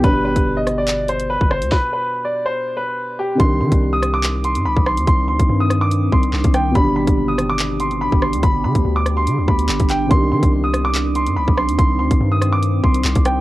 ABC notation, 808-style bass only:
X:1
M:4/4
L:1/16
Q:1/4=143
K:Cm
V:1 name="808-style bass" clef=bass
G,,,2 A,,, G,,,8- G,,,2 G,,,2 D,, | z16 | C,,2 E, C,,8 G,, C,, =B,,,2 E,, | C,,2 D,, C,, G,,6 C,,2 C,, C,,3 |
G,,,2 A,,, G,,,8- G,,,2 G,,,2 D,, | G,,,2 D, D,, D,,4 D, D,, D,,2 G,,, G,,,3 | C,,2 E, C,,8 G,, C,, =B,,,2 E,, | C,,2 D,, C,, G,,6 C,,2 C,, C,,3 |]